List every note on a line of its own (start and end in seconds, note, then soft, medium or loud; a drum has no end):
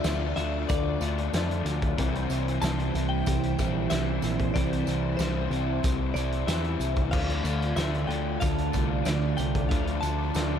0.00 1.97 D3 medium
0.00 1.98 A3 medium
0.00 1.94 D4 medium
0.00 1.98 D4 medium
0.00 1.94 F4 medium
0.00 1.99 F4 medium
0.00 1.94 D5 medium
0.00 0.35 E5 loud
0.00 closed hi-hat medium
0.04 0.32 D2 loud
0.04 0.69 D3 medium
0.04 1.33 F3 medium
0.04 0.38 A3 medium
0.04 0.37 D4 medium
0.04 0.36 F4 medium
0.04 snare loud
0.04 tambourine loud
0.36 0.64 D2 loud
0.36 1.01 A3 medium
0.36 1.03 A3 medium
0.36 1.02 D4 medium
0.36 1.01 F4 medium
0.36 0.68 E5 medium
0.36 closed hi-hat medium
0.69 0.97 D2 medium
0.69 1.61 D5 medium
0.69 kick loud
0.69 closed hi-hat loud
0.69 tambourine medium
1.01 1.28 D2 medium
1.01 1.98 A3 medium
1.01 1.34 A3 medium
1.01 1.34 D4 medium
1.01 1.35 F4 medium
1.01 closed hi-hat medium
1.01 tambourine medium
1.18 closed hi-hat soft
1.33 1.61 F2 medium
1.33 1.96 D3 medium
1.33 1.66 F3 medium
1.33 1.97 A3 medium
1.33 1.97 D4 medium
1.33 1.97 F4 medium
1.33 snare loud
1.33 closed hi-hat loud
1.33 tambourine medium
1.51 closed hi-hat soft
1.65 1.93 D2 medium
1.65 1.98 F3 medium
1.65 snare soft
1.65 closed hi-hat medium
1.65 tambourine medium
1.82 kick medium
1.82 closed hi-hat soft
1.98 2.26 C2 loud
1.98 4.55 C3 loud
1.98 2.61 E3 loud
1.98 2.30 E3 medium
1.98 2.32 G3 loud
1.98 2.31 C4 loud
1.98 7.09 E4 medium
1.98 2.30 E4 loud
1.98 7.09 C5 medium
1.98 4.53 G5 medium
1.98 kick loud
1.98 closed hi-hat loud
2.15 closed hi-hat soft
2.30 2.57 C2 medium
2.30 3.90 E3 medium
2.30 2.62 G3 medium
2.30 2.63 C4 medium
2.30 2.64 E4 medium
2.30 closed hi-hat medium
2.30 tambourine medium
2.48 closed hi-hat medium
2.62 2.90 C2 loud
2.62 3.90 E3 medium
2.62 2.97 G3 medium
2.62 4.22 C4 medium
2.62 2.96 C4 medium
2.62 2.95 E4 medium
2.62 3.08 A5 loud
2.62 snare loud
2.62 closed hi-hat loud
2.62 tambourine loud
2.79 closed hi-hat soft
2.95 3.22 C2 medium
2.95 3.59 G3 medium
2.95 3.59 C4 medium
2.95 3.58 E4 medium
2.95 closed hi-hat medium
3.09 3.90 G5 medium
3.26 3.54 C2 medium
3.26 4.88 G4 medium
3.26 kick loud
3.26 closed hi-hat loud
3.26 tambourine medium
3.43 closed hi-hat medium
3.59 3.86 A#1 medium
3.59 3.90 G3 medium
3.59 3.90 C4 medium
3.59 3.92 E4 medium
3.59 5.51 E4 medium
3.59 kick medium
3.59 closed hi-hat medium
3.59 tambourine medium
3.90 4.19 C2 medium
3.90 4.55 E3 medium
3.90 4.56 E3 medium
3.90 4.55 G3 medium
3.90 4.55 C4 medium
3.90 4.57 E4 medium
3.90 4.57 E5 medium
3.90 snare loud
3.90 closed hi-hat loud
3.90 tambourine loud
4.22 4.50 A#1 medium
4.22 5.19 C4 medium
4.22 snare soft
4.22 closed hi-hat medium
4.22 tambourine medium
4.40 kick medium
4.40 closed hi-hat soft
4.54 4.83 C2 loud
4.54 5.20 C3 medium
4.54 5.18 E3 medium
4.54 4.87 E3 medium
4.54 4.88 G3 medium
4.54 4.87 C4 medium
4.54 4.86 E4 loud
4.54 5.17 D5 medium
4.54 7.10 A5 medium
4.54 kick loud
4.54 closed hi-hat loud
4.54 tambourine soft
4.73 closed hi-hat medium
4.87 5.15 C2 medium
4.87 6.48 E3 medium
4.87 5.19 G3 medium
4.87 5.19 C4 medium
4.87 5.21 E4 medium
4.87 closed hi-hat medium
4.87 tambourine medium
5.17 5.47 C2 loud
5.17 6.48 E3 medium
5.17 5.52 G3 medium
5.17 6.79 C4 medium
5.17 5.52 C4 medium
5.17 6.14 C5 medium
5.17 snare loud
5.17 closed hi-hat loud
5.17 tambourine loud
5.21 5.51 E4 medium
5.50 5.78 C2 medium
5.50 6.17 G3 medium
5.50 6.16 C4 medium
5.50 6.15 E4 medium
5.50 6.16 E4 medium
5.50 closed hi-hat medium
5.50 tambourine soft
5.83 6.11 C2 medium
5.83 7.13 G4 medium
5.83 kick loud
5.83 closed hi-hat loud
5.83 tambourine medium
6.14 6.43 C2 medium
6.14 6.47 G3 medium
6.14 6.48 C4 medium
6.14 7.15 E4 medium
6.14 6.49 E4 medium
6.14 6.48 D5 medium
6.14 closed hi-hat medium
6.14 tambourine medium
6.32 closed hi-hat soft
6.47 6.75 E2 medium
6.47 7.12 E3 medium
6.47 7.11 G3 medium
6.47 7.12 C4 medium
6.47 7.14 E4 medium
6.47 7.11 E5 medium
6.47 snare loud
6.47 closed hi-hat loud
6.47 tambourine medium
6.64 closed hi-hat soft
6.79 7.13 C2 medium
6.79 7.13 C4 medium
6.79 closed hi-hat medium
6.79 tambourine medium
6.96 kick medium
6.96 closed hi-hat soft
7.11 7.41 D2 loud
7.11 7.76 D3 loud
7.11 7.44 F3 medium
7.11 7.46 A3 loud
7.11 10.59 D4 medium
7.11 7.45 D4 loud
7.11 10.59 F4 medium
7.11 7.44 F4 loud
7.11 10.59 D5 medium
7.11 7.76 F5 loud
7.11 kick loud
7.11 crash loud
7.30 closed hi-hat soft
7.44 7.72 D2 medium
7.44 9.06 F3 medium
7.44 7.77 A3 medium
7.44 7.77 D4 medium
7.44 7.78 F4 medium
7.44 closed hi-hat medium
7.44 tambourine medium
7.62 closed hi-hat soft
7.76 8.04 D2 medium
7.76 9.05 D3 medium
7.76 8.10 A3 medium
7.76 9.38 A3 medium
7.76 8.09 D4 medium
7.76 8.08 F4 medium
7.76 8.07 E5 medium
7.76 snare loud
7.76 closed hi-hat loud
7.76 tambourine loud
7.94 closed hi-hat soft
8.07 8.36 D2 medium
8.07 8.73 A3 medium
8.07 8.72 D4 medium
8.07 8.71 F4 medium
8.07 8.40 G5 medium
8.07 closed hi-hat medium
8.40 8.70 D2 medium
8.40 10.03 A4 medium
8.40 9.08 F5 medium
8.40 kick loud
8.40 closed hi-hat loud
8.40 tambourine medium
8.58 closed hi-hat medium
8.72 9.02 C2 medium
8.72 9.05 A3 medium
8.72 9.06 D4 medium
8.72 9.06 F4 medium
8.72 kick medium
8.72 closed hi-hat medium
8.72 tambourine medium
9.05 9.34 D2 loud
9.05 9.68 D3 medium
9.05 9.70 F3 medium
9.05 9.69 A3 medium
9.05 9.70 D4 medium
9.05 9.70 F4 medium
9.05 9.39 D5 medium
9.05 snare loud
9.05 closed hi-hat loud
9.05 tambourine medium
9.37 9.66 C2 medium
9.37 10.33 A3 medium
9.37 9.68 G5 medium
9.37 closed hi-hat medium
9.37 tambourine medium
9.55 kick medium
9.55 closed hi-hat medium
9.69 9.99 D2 loud
9.69 10.34 D3 medium
9.69 10.02 F3 medium
9.69 10.03 A3 medium
9.69 10.02 D4 loud
9.69 10.01 F4 loud
9.69 10.00 F5 medium
9.69 kick loud
9.69 closed hi-hat loud
9.87 closed hi-hat medium
10.01 10.30 D2 medium
10.01 10.59 F3 medium
10.01 10.34 A3 medium
10.01 10.35 D4 medium
10.01 10.36 F4 medium
10.01 10.59 A5 loud
10.01 closed hi-hat medium
10.01 tambourine medium
10.34 10.59 D2 medium
10.34 10.59 D3 medium
10.34 10.59 A3 medium
10.34 10.59 D4 medium
10.34 10.59 F4 medium
10.34 snare loud
10.34 closed hi-hat loud
10.34 tambourine loud